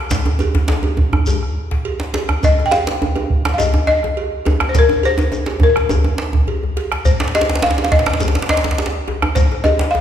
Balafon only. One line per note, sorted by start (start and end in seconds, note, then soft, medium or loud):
2.44 2.67 D#5 medium
2.66 2.72 G5 medium
2.71 3.53 F5 loud
3.54 3.60 F5 medium
3.58 3.86 D#5 medium
3.87 4.42 D#5 medium
4.69 4.75 C5 medium
4.79 5.06 A#4 medium
5.05 5.64 C5 loud
5.63 6.74 A#4 medium
7.05 7.35 C5 medium
7.35 7.64 D#5 medium
7.63 7.83 F5 medium
7.84 7.91 F5 medium
7.92 8.49 D#5 medium
8.50 9.04 D#5 medium
9.35 9.65 C5 medium
9.64 9.94 D#5 medium
9.91 10.01 F5 medium